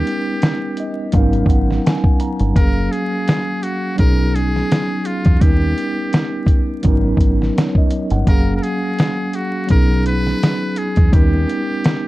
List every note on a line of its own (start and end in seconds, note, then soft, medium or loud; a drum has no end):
0.00 1.09 G3 medium
0.00 1.10 B3 medium
0.00 1.10 C#4 medium
0.00 1.11 D#4 medium
0.00 1.14 G4 loud
0.00 1.12 A#4 medium
0.07 closed hi-hat medium
0.42 snare loud
0.42 closed hi-hat medium
0.77 1.12 D#5 medium
0.77 closed hi-hat medium
1.12 1.44 G#1 loud
1.12 2.53 F#3 medium
1.12 1.20 A#3 medium
1.12 2.54 C#4 medium
1.12 1.47 F5 medium
1.12 kick medium
1.12 closed hi-hat medium
1.16 2.56 B3 medium
1.16 2.54 D#4 medium
1.16 2.55 A#4 medium
1.33 closed hi-hat soft
1.46 1.78 G#1 medium
1.46 1.82 F#5 medium
1.46 kick medium
1.46 closed hi-hat medium
1.71 snare soft
1.86 2.18 G#5 medium
1.86 snare loud
1.86 closed hi-hat medium
2.04 kick medium
2.20 2.53 A#5 medium
2.20 closed hi-hat medium
2.39 2.54 G1 loud
2.39 closed hi-hat soft
2.54 2.87 F#1 loud
2.54 3.94 F#3 medium
2.54 3.95 A#3 medium
2.54 3.96 C#4 medium
2.54 2.93 A#4 loud
2.54 kick loud
2.54 closed hi-hat medium
2.58 3.97 G#4 medium
2.58 3.97 F5 medium
2.92 3.65 G#4 loud
2.92 closed hi-hat medium
3.28 snare loud
3.28 closed hi-hat medium
3.63 3.99 F#4 medium
3.63 closed hi-hat medium
3.95 5.37 F#3 medium
3.95 5.38 B3 medium
3.95 5.38 C#4 medium
3.95 5.39 D#4 medium
3.95 4.37 A#4 loud
3.95 kick medium
3.95 closed hi-hat medium
4.00 4.61 B1 loud
4.00 5.39 G#4 medium
4.35 5.08 G#4 loud
4.35 closed hi-hat medium
4.56 snare soft
4.72 snare loud
4.72 closed hi-hat medium
5.05 5.43 F4 medium
5.05 closed hi-hat medium
5.25 5.39 E2 medium
5.25 kick medium
5.25 closed hi-hat soft
5.39 5.73 D#2 loud
5.39 6.80 G3 medium
5.39 6.81 B3 medium
5.39 6.81 C#4 medium
5.39 6.82 D#4 medium
5.39 6.84 G4 loud
5.39 kick loud
5.39 closed hi-hat medium
5.44 6.82 A#4 medium
5.78 closed hi-hat medium
6.13 snare loud
6.13 closed hi-hat medium
6.47 kick medium
6.47 closed hi-hat medium
6.83 7.16 G#1 loud
6.83 8.23 F#3 medium
6.83 8.24 B3 medium
6.83 8.25 C#4 medium
6.83 8.25 D#4 medium
6.83 kick medium
6.83 closed hi-hat medium
6.88 8.26 A#4 medium
7.17 7.49 G#1 medium
7.17 kick medium
7.17 closed hi-hat medium
7.42 snare soft
7.57 7.75 C#5 medium
7.57 snare loud
7.57 closed hi-hat medium
7.75 8.11 D#5 medium
7.75 kick medium
7.91 closed hi-hat medium
8.10 8.25 G1 loud
8.10 8.45 F#5 medium
8.10 closed hi-hat soft
8.25 8.58 F#1 loud
8.25 9.65 F#3 medium
8.25 9.67 A#3 medium
8.25 9.68 C#4 medium
8.25 8.55 A#4 loud
8.25 kick loud
8.25 closed hi-hat medium
8.30 9.69 G#4 medium
8.30 9.68 F5 medium
8.56 8.64 A#4 medium
8.63 9.36 G#4 medium
8.63 closed hi-hat medium
8.98 snare loud
8.98 closed hi-hat medium
9.33 9.70 F#4 medium
9.33 closed hi-hat medium
9.67 11.08 F#3 medium
9.67 11.09 B3 medium
9.67 11.09 C#4 medium
9.67 kick medium
9.67 closed hi-hat medium
9.71 10.32 B1 loud
9.71 11.10 D#4 medium
9.71 11.11 G#4 medium
9.71 10.04 A#4 loud
10.06 10.79 B4 loud
10.06 closed hi-hat medium
10.27 snare soft
10.43 snare loud
10.43 closed hi-hat medium
10.76 11.15 G#4 medium
10.76 closed hi-hat medium
10.96 11.11 E2 medium
10.96 kick loud
10.96 closed hi-hat soft
11.11 11.44 D#2 loud
11.11 12.08 G3 medium
11.11 12.08 B3 medium
11.11 12.08 C#4 medium
11.11 12.08 D#4 medium
11.11 12.08 G4 medium
11.11 kick loud
11.11 closed hi-hat medium
11.16 12.08 A#4 medium
11.50 closed hi-hat medium
11.84 snare loud
11.84 closed hi-hat medium